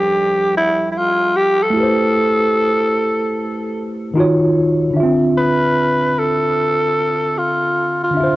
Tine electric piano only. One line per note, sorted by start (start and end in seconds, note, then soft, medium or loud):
0.00 1.72 F3 medium
0.00 1.69 G3 medium
0.00 1.71 D4 medium
0.00 1.74 A4 medium
0.00 1.75 C5 medium
1.70 4.09 A3 medium
1.70 4.11 E4 medium
1.76 4.12 G4 medium
1.76 4.14 B4 medium
1.83 4.16 C5 medium
4.14 4.95 D#3 medium
4.14 4.96 D#4 medium
4.14 4.97 F4 medium
4.19 4.97 F#4 medium
4.19 4.98 C#5 medium
4.90 8.09 D3 medium
4.90 8.11 D4 medium
4.97 8.14 F4 medium
4.97 8.12 E5 medium
5.03 8.16 C4 medium
8.11 8.36 D3 medium
8.11 8.36 D4 medium
8.17 8.36 F4 medium
8.17 8.36 E5 medium
8.23 8.36 C5 medium